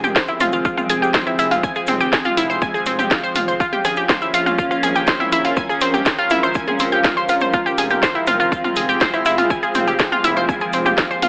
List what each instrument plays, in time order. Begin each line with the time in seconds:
Already playing: analog synth bass F1, ambient pad F3 G#3 C4 F4 G#4 A#4
0.04 synth arpeggio sound G4 G5, mid tom, cabasa
0.16 synth arpeggio sound C5 C6, kick, snare, cabasa
0.28 synth arpeggio sound E4 E5, cabasa
0.40 analog synth bass F1, synth arpeggio sound F4 F5, cross-stick, open hi-hat, mid tom, cabasa
0.52 synth arpeggio sound F4 F5, cabasa
0.65 synth arpeggio sound F4 F5, kick, cabasa
0.77 synth arpeggio sound F4 F5, mid tom, cabasa
0.90 analog synth bass F1, synth arpeggio sound G#4 G#5, open hi-hat, cabasa
1.02 synth arpeggio sound G4 G5, ambient pad F5, cabasa
1.14 synth arpeggio sound C5 C6, kick, snare, mid tom, cabasa
1.26 synth arpeggio sound E4 E5, cross-stick, cabasa
1.39 analog synth bass F1, synth arpeggio sound E4 E5, open hi-hat, cabasa
1.51 synth arpeggio sound F4 F5, open hi-hat, mid tom, cabasa
1.63 synth arpeggio sound G#5 G#6, kick, cabasa
1.76 synth arpeggio sound G#4 G#5, cabasa
1.87 analog synth bass F1, synth arpeggio sound C4 C5, open hi-hat, mid tom, cabasa
2.00 synth arpeggio sound G4 G5, cabasa
2.13 synth arpeggio sound G#4 G#5, kick, cross-stick, snare, cabasa
2.25 synth arpeggio sound F4 F5, mid tom, cabasa
2.37 analog synth bass F1, synth arpeggio sound E4 E5, open hi-hat, cabasa
2.50 synth arpeggio sound C5 C6, cabasa
2.62 synth arpeggio sound G#5 G#6, kick, mid tom, cabasa
2.74 synth arpeggio sound G#4 G#5, cabasa
2.86 analog synth bass F1, synth arpeggio sound C4 C5, open hi-hat, cabasa
2.99 synth arpeggio sound G4 G5, cross-stick, mid tom, cabasa
3.11 synth arpeggio sound F4 F5, kick, snare, cabasa
3.23 synth arpeggio sound C5 C6, cabasa
3.35 analog synth bass F1, synth arpeggio sound F4 F5, open hi-hat, mid tom, cabasa
3.48 synth arpeggio sound C5 C6, cabasa
3.60 ambient pad A#3 C#4, synth arpeggio sound F4 F5, kick, cabasa
3.73 synth arpeggio sound G4 G5, mid tom, cabasa
3.85 analog synth bass A#1, synth arpeggio sound G#4 G#5, cross-stick, open hi-hat, cabasa
3.96 synth arpeggio sound G4 G5, cabasa
4.09 synth arpeggio sound C5 C6, kick, snare, mid tom, cabasa
4.22 synth arpeggio sound E4 E5, cabasa
4.34 analog synth bass A#1, synth arpeggio sound F4 F5, open hi-hat, cabasa
4.39 ambient pad A#4
4.46 synth arpeggio sound F4 F5, mid tom, cabasa
4.58 synth arpeggio sound F4 F5, kick, cabasa
4.71 synth arpeggio sound F4 F5, cross-stick, cabasa
4.83 analog synth bass A#1, synth arpeggio sound G#4 G#5, open hi-hat, mid tom, cabasa
4.95 synth arpeggio sound G4 G5, cabasa
5.07 synth arpeggio sound C5 C6, kick, snare, cabasa
5.20 synth arpeggio sound E4 E5, mid tom, cabasa
5.32 analog synth bass A#1, synth arpeggio sound E4 E5, open hi-hat, cabasa
5.45 synth arpeggio sound F4 F5, open hi-hat, cabasa
5.57 ambient pad G#3, synth arpeggio sound G#5 G#6, kick, cross-stick, mid tom, cabasa
5.69 synth arpeggio sound G#4 G#5, cabasa
5.81 analog synth bass A#1, synth arpeggio sound C4 C5, open hi-hat, cabasa
5.94 synth arpeggio sound G4 G5, mid tom, cabasa
6.06 synth arpeggio sound G#4 G#5, kick, snare, cabasa
6.18 synth arpeggio sound F4 F5, cabasa
6.30 analog synth bass A#1, synth arpeggio sound E4 E5, open hi-hat, mid tom, cabasa
6.43 synth arpeggio sound C5 C6, cross-stick, cabasa
6.54 synth arpeggio sound G#5 G#6, kick, cabasa
6.67 synth arpeggio sound G#4 G#5, mid tom, cabasa
6.79 analog synth bass A#1, synth arpeggio sound C4 C5, open hi-hat, cabasa
6.92 synth arpeggio sound G4 G5, cabasa
7.04 synth arpeggio sound F4 F5, kick, snare, mid tom, cabasa
7.17 synth arpeggio sound C5 C6, cabasa
7.29 analog synth bass A#1, synth arpeggio sound F4 F5, cross-stick, open hi-hat, cabasa
7.41 synth arpeggio sound C5 C6, mid tom, cabasa
7.53 ambient pad F3 G#3 C4, synth arpeggio sound F4 F5, kick, mid tom, cabasa
7.66 synth arpeggio sound G4 G5, cabasa
7.78 analog synth bass F1, synth arpeggio sound G#4 G#5, open hi-hat, cabasa
7.90 synth arpeggio sound G4 G5, mid tom, cabasa
8.03 synth arpeggio sound C5 C6, kick, snare, cabasa
8.15 synth arpeggio sound E4 E5, cabasa
8.27 analog synth bass F1, synth arpeggio sound F4 F5, cross-stick, open hi-hat, mid tom, cabasa
8.37 synth arpeggio sound F4 F5, ambient pad G#4, cabasa
8.52 synth arpeggio sound F4 F5, kick, cabasa
8.64 synth arpeggio sound F4 F5, mid tom, cabasa
8.76 analog synth bass F1, synth arpeggio sound G#4 G#5, open hi-hat, cabasa
8.89 synth arpeggio sound G4 G5, cabasa
9.01 synth arpeggio sound C5 C6, kick, snare, mid tom, cabasa
9.13 synth arpeggio sound E4 E5, cross-stick, cabasa
9.25 analog synth bass F1, synth arpeggio sound E4 E5, open hi-hat, cabasa
9.38 synth arpeggio sound F4 F5, open hi-hat, mid tom, cabasa
9.50 ambient pad A#3, synth arpeggio sound G#5 G#6, kick, cabasa
9.63 synth arpeggio sound G#4 G#5, cabasa
9.75 analog synth bass F1, synth arpeggio sound C4 C5, open hi-hat, mid tom, cabasa
9.87 synth arpeggio sound G4 G5, cabasa
9.99 synth arpeggio sound G#4 G#5, kick, cross-stick, snare, cabasa
10.12 synth arpeggio sound F4 F5, mid tom, cabasa
10.24 analog synth bass F1, synth arpeggio sound E4 E5, open hi-hat, cabasa
10.36 synth arpeggio sound C5 C6, cabasa
10.49 synth arpeggio sound G#5 G#6, kick, mid tom, cabasa
10.61 synth arpeggio sound G#4 G#5, cabasa
10.73 analog synth bass F1, synth arpeggio sound C4 C5, open hi-hat, cabasa
10.86 synth arpeggio sound G4 G5, cross-stick, mid tom, cabasa
10.98 synth arpeggio sound F4 F5, kick, snare, cabasa
11.11 synth arpeggio sound C5 C6, cabasa
11.22 analog synth bass F1, synth arpeggio sound F4 F5, open hi-hat, mid tom, cabasa